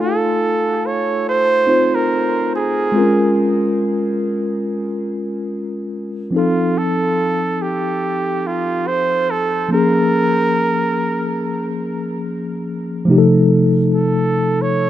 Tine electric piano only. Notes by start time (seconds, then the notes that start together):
Already playing: A3 D#4 F4 A4 F5 G#5
1.67 C4 D#4 F4 C5
2.92 G#3 C4 F4
2.98 C#4 A#4
6.31 F3 C4 D#4
6.36 A4
9.69 F3 A#3 C#4
9.74 G#4
13.05 C3 F3 A3
13.10 D#4 G4
13.18 A4